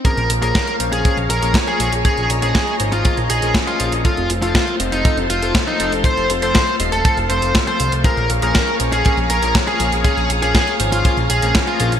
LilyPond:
<<
  \new Staff \with { instrumentName = "String machine" } { \time 4/4 \key bes \minor \tempo 4 = 120 << { <aes' des'' bes''>1~ | <aes' des'' bes''>1 | <a' c'' c'''>1~ | <a' c'' c'''>1 |
<aes' des'' bes''>1~ | <aes' des'' bes''>1 | } \\ { f''1 | ees''1 | f''1~ | f''1~ |
f''1~ | f''1 | } >> }
  \new Staff \with { instrumentName = "Lead electric guitar" } { \time 4/4 \key bes \minor bes'8 r16 bes'8. r16 aes'8 r16 bes'8 r16 aes'8 r16 | aes'8 r16 aes'8. r16 f'8 r16 aes'8 r16 f'8 r16 | f'8 r16 f'8. r16 ees'8 r16 f'8 r16 ees'8 r16 | c''8 r16 c''8. r16 a'8 r16 c''8 r16 c''8 r16 |
bes'8 r16 bes'8. r16 aes'8 r16 bes'8 r16 aes'8 r16 | aes'8 r16 aes'8. r16 f'8 r16 aes'8 r16 f'8 r16 | }
  \new Staff \with { instrumentName = "Electric grand piano" } { \time 4/4 \key bes \minor <f bes des' aes'>8. <f bes des' aes'>16 r8 <f bes des' c''>8 <f bes des' aes'>16 r8 <f bes des' aes'>8. <f bes des' aes'>8 | <f bes des' aes'>8. <f bes des' aes'>16 r8 <f bes des' c''>8 <f bes des' aes'>16 r8 <f bes des' aes'>8. <f bes des' aes'>8 | <f a c' a'>8. <f a c' a'>16 r8 <f a c' ees''>8 <f a c' a'>16 r8 <f a c' a'>8. <f a c' a'>8 | <f a c' a'>8. <f a c' a'>16 r8 <f a c' ees''>8 <f a c' a'>16 r16 <f a c' a'>8. <f a c' a'>8 <f a c' c''>16 |
<f bes des' aes'>8. <f bes des' aes'>16 r8 <f bes des' c''>8 <f bes des' aes'>16 r8 <f bes des' aes'>8. <f bes des' aes'>8 | <f bes des' aes'>8. <f bes des' aes'>16 r8 <f bes des' c''>8 <f bes des' aes'>16 r8 <f bes des' aes'>8. <f bes des' aes'>8 | }
  \new Staff \with { instrumentName = "Analog synth bass" } { \clef bass \time 4/4 \key bes \minor r16 bes,,16 bes,,16 bes,,16 r8 bes,,16 bes,,16 r16 bes,,16 bes,,16 bes,,16 r8 bes,,16 bes,,16 | r16 bes,,16 bes,,16 bes,,16 r8 aes,,16 aes,,16 r16 bes,,16 bes,,16 bes,,16 r8 bes,,16 bes,,16 | r16 f,,16 f,,16 f,,16 r8 f,,16 f,,16 r16 f,,16 f,,16 f,,16 r8 f,,16 f,,16 | r16 f,,16 f,,16 f,,16 r8 ees,,16 ees,,16 r16 f,,16 f,,16 f,,16 r8 c,16 c,16 |
r16 bes,,16 bes,,16 bes,,16 r8 bes,,16 bes,,16 r16 bes,,16 bes,,16 bes,,16 r8 bes,,16 bes,,16 | r16 bes,,16 bes,,16 bes,,16 r8 aes,,16 aes,,16 r16 bes,,16 bes,,16 bes,,16 r8 bes,,16 bes,,16 | }
  \new DrumStaff \with { instrumentName = "Drums" } \drummode { \time 4/4 <hh bd>16 hh16 hh16 hh16 <hh bd sn>16 hh16 hh16 hh16 <hh bd>16 hh16 hh16 hh16 <hh bd sn>16 hh16 hh16 hh16 | <hh bd>16 hh16 hh16 hh16 <hh bd sn>16 hh16 hh16 hh16 <hh bd>16 hh16 hh16 hh16 <hh bd sn>16 hh16 hh16 hh16 | <hh bd>16 hh16 hh16 hh16 <hh bd sn>16 hh16 hh16 hh16 <hh bd>16 hh16 hh16 hh16 <hh bd sn>16 hh16 hh16 hh16 | <hh bd>16 hh16 hh16 hh16 <hh bd sn>16 hh16 hh16 hh16 <hh bd>16 hh16 hh16 hh16 <hh bd sn>16 hh16 hh16 hh16 |
<hh bd>16 hh16 hh16 hh16 <hh bd sn>16 hh16 hh16 hh16 <hh bd>16 hh16 hh16 hh16 <hh bd sn>16 hh16 hh16 hh16 | <hh bd>16 hh16 hh16 hh16 <hh bd sn>16 hh16 hh16 hh16 <hh bd>16 hh16 hh16 hh16 <hh bd sn>16 hh16 hh16 hh16 | }
>>